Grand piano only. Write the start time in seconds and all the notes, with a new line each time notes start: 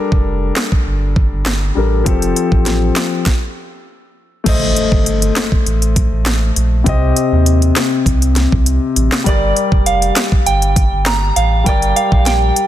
Already playing: G3 D4 A4 A#4
1.75 G3 D4 A4 A#4
2.04 F3 C4 G4
2.09 A4
4.44 A3 A4 C5
4.49 D#5
6.84 C3 C4 G4
6.89 D#5
9.24 G3 G4 A#4
9.29 D5
11.64 G3 G4 A#4
11.69 D5